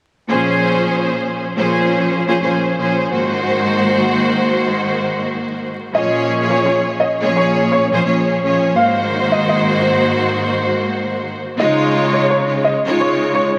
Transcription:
0.28 string section A#2 F3 C#4 G#4 C5
1.56 string section A#2 F3 C#4 G#4 C5
2.26 string section A#2 F3 C#4 G#4 C5
2.40 string section A#2 F3 C#4 G#4 C5
2.78 string section A#2 F3 C#4 G#4 C5
3.09 string section G#2 D#3 A#3 F#4 C5
5.93 string section A#2 F3 C#4 G#4 C#5, upright piano D#5
6.50 upright piano C#5
6.66 upright piano C#5
7.00 upright piano D#5
7.21 string section A#2 F3 C#4 G#4 C#5
7.36 upright piano C#5
7.72 upright piano C#5
7.92 string section A#2 F3 C#4 G#4 C5
8.05 string section A#2 F3 C#4 G#4 C#5
8.43 string section A#2 F3 C#4 G#4 C#5
8.74 string section G#2 D#3 A#3 F#4 C5, upright piano F5
9.32 upright piano D#5
9.49 upright piano D#5
9.81 upright piano C5
11.58 string section C#3 G#3 D#4 F4 C#5, upright piano D#5
12.13 upright piano C#5
12.30 upright piano C#5
12.64 upright piano D#5
12.85 string section C#3 G#3 D#4 F4 C#5
13.01 upright piano C#5
13.35 upright piano C#5

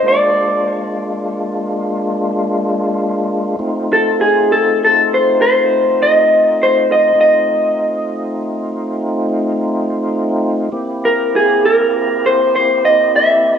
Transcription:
0.02 tonewheel organ G#3 A#3 D4 F4
0.08 clean electric guitar D5
3.59 tonewheel organ A3 C4 D#4 F4
3.93 clean electric guitar A4
4.21 clean electric guitar G#4
4.52 clean electric guitar A4
4.84 clean electric guitar A4
5.14 clean electric guitar C5
5.42 clean electric guitar C5
6.02 clean electric guitar D#5
6.63 clean electric guitar C5
6.92 clean electric guitar D#5
7.15 tonewheel organ A3 C4 D#4 F4
7.21 clean electric guitar D#5
10.72 tonewheel organ A#3 C4 E4 G4
11.05 clean electric guitar A#4
11.36 clean electric guitar G#4
11.66 clean electric guitar A#4
12.26 clean electric guitar C5
12.56 clean electric guitar C5
12.85 clean electric guitar D#5
13.16 clean electric guitar E5

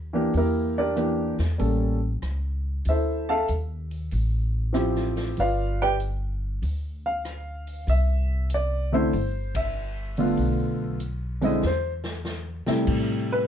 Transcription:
Already playing: upright bass D#2
0.13 grand piano E3 A#3 D4 G4
0.34 upright bass E2, grand piano A#3 E4 G4 A#4, open hi-hat
0.78 grand piano D4 G4 A#4 D5
0.96 grand piano E3 A#3 D4 G4, closed hi-hat
1.39 upright bass E2, snare, open hi-hat
1.58 upright bass A1, grand piano G3 A#3 C#4 A4, open hi-hat
2.22 upright bass C#2, cross-stick, closed hi-hat
2.85 upright bass D2, grand piano E4 E5, open hi-hat
2.89 grand piano A4 C5
3.29 grand piano A4 E5 F5 A5
3.48 upright bass D#2, closed hi-hat
3.91 open hi-hat
4.11 upright bass A1, open hi-hat
4.73 grand piano F3 C4 E4 G4, cross-stick, closed hi-hat
4.96 snare
5.16 snare, open hi-hat
5.37 upright bass G1, grand piano F4 B4 D5 F5, open hi-hat
5.82 grand piano G4 B4 D5 G5
6.00 closed hi-hat
6.62 upright bass D2, open hi-hat
7.06 grand piano F5
7.25 cross-stick, closed hi-hat
7.67 open hi-hat
7.87 upright bass C2, grand piano E5, open hi-hat
8.50 closed hi-hat
8.54 grand piano D5
8.92 grand piano D3 A3 C4 E4 C5
9.13 upright bass G1, open hi-hat
9.55 grand piano E5, kick, ride
10.17 grand piano D3 A3 B3 F4, open hi-hat
10.37 upright bass B1, open hi-hat
11.00 closed hi-hat
11.41 grand piano D3 G#3 C4 E4 D#5, open hi-hat
11.62 upright bass E2, snare
11.67 grand piano C5
12.04 snare
12.25 snare
12.66 grand piano C3 G3 A3 E4, muted upright bass stroke, snare
12.87 upright bass A2, kick, crash
13.32 grand piano B4

